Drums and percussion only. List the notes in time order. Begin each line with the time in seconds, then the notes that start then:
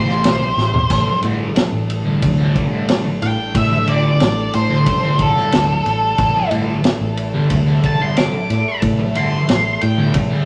0.09 snare
0.24 snare, ride
0.58 snare
0.74 floor tom
0.90 kick, ride, splash
1.23 ride
1.56 snare, ride
1.90 ride
2.22 kick, ride
2.55 kick, ride
2.89 snare, ride
3.22 snare, ride
3.55 kick, ride
3.87 ride
4.20 snare, ride
4.54 ride
4.86 kick, ride
5.19 kick, ride
5.37 snare
5.52 snare, ride
5.86 snare, ride
6.18 kick, ride
6.51 ride
6.84 snare, ride
7.17 ride
7.50 kick, ride
7.83 kick, ride
8.17 snare, ride
8.50 snare, ride
8.82 kick, ride
9.15 ride
9.49 snare, ride
9.81 ride
10.14 kick, ride